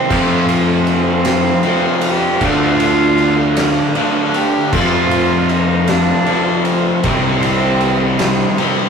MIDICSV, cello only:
0, 0, Header, 1, 2, 480
1, 0, Start_track
1, 0, Tempo, 770218
1, 69, Time_signature, 6, 3, 24, 8
1, 5540, End_track
2, 0, Start_track
2, 0, Title_t, "Cello"
2, 0, Program_c, 0, 42
2, 0, Note_on_c, 0, 60, 121
2, 281, Note_off_c, 0, 60, 0
2, 556, Note_on_c, 0, 60, 105
2, 1291, Note_on_c, 0, 67, 108
2, 1300, Note_off_c, 0, 60, 0
2, 1535, Note_on_c, 0, 65, 127
2, 1545, Note_off_c, 0, 67, 0
2, 2480, Note_off_c, 0, 65, 0
2, 2712, Note_on_c, 0, 67, 104
2, 2945, Note_on_c, 0, 65, 115
2, 2955, Note_off_c, 0, 67, 0
2, 3432, Note_on_c, 0, 63, 110
2, 3441, Note_off_c, 0, 65, 0
2, 3662, Note_on_c, 0, 62, 108
2, 3672, Note_off_c, 0, 63, 0
2, 4137, Note_on_c, 0, 60, 93
2, 4147, Note_off_c, 0, 62, 0
2, 4382, Note_off_c, 0, 60, 0
2, 4387, Note_on_c, 0, 60, 108
2, 5325, Note_off_c, 0, 60, 0
2, 5540, End_track
0, 0, End_of_file